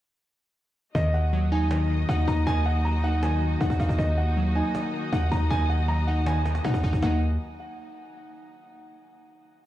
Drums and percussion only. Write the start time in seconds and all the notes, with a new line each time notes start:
0.95 cajon bass
1.14 cajon slap
1.33 cajon slap
1.52 cajon slap
1.56 cajon slap
1.61 cajon slap
1.66 cajon slap
1.71 cajon slap
1.90 cajon slap
2.09 cajon bass
2.28 cajon bass
2.37 cajon slap
2.47 cajon bass
2.66 cajon slap
2.72 cajon slap
2.78 cajon slap
2.85 cajon slap
2.91 cajon slap
2.97 cajon slap
3.04 cajon slap
3.13 cajon slap
3.23 cajon slap
3.29 cajon slap
3.42 cajon slap
3.48 cajon slap
3.54 cajon slap
3.61 cajon bass
3.65 cajon slap
3.70 cajon bass
3.75 cajon slap
3.80 cajon bass
3.89 cajon bass
3.99 cajon bass
4.18 cajon slap
4.37 cajon slap
4.56 cajon slap
4.60 cajon slap
4.65 cajon slap
4.70 cajon slap
4.75 cajon slap
4.94 cajon slap
5.13 cajon bass
5.32 cajon bass
5.41 cajon slap
5.50 cajon bass
5.70 cajon slap
5.88 cajon slap
6.07 cajon slap
6.14 cajon slap
6.20 cajon slap
6.26 cajon slap
6.31 cajon slap
6.36 cajon slap
6.41 cajon slap
6.45 cajon slap
6.52 cajon slap
6.55 cajon slap
6.58 cajon slap
6.65 cajon bass
6.69 cajon slap
6.74 cajon bass
6.79 cajon slap
6.83 cajon bass
6.93 cajon bass
7.02 cajon bass, cajon slap